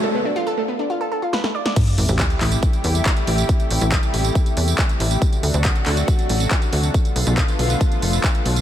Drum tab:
CC |----------------|x---------------|----------------|----------------|
HH |----------------|xxoxxxoxxxoxxxox|xxoxxxoxxxoxxxox|xxo-xxoxxxoxxxox|
TB |----------------|xx-xxx-xxx-xxx-x|xx-xxx-xxx-xxx-x|xx-xxx-xxx-xxx-x|
CP |----------------|----x-x-----x---|----x-------x---|----x-x-----x---|
SD |------------oo-o|----------------|----------------|----------------|
BD |----------------|o---o---o---o---|o---o---o---o---|o---o---o---o---|

CC |----------------|
HH |xxoxxxoxxxoxxxox|
TB |xx-xxx-xxx-xxx-x|
CP |----x-------x---|
SD |----------------|
BD |o---o---o---o---|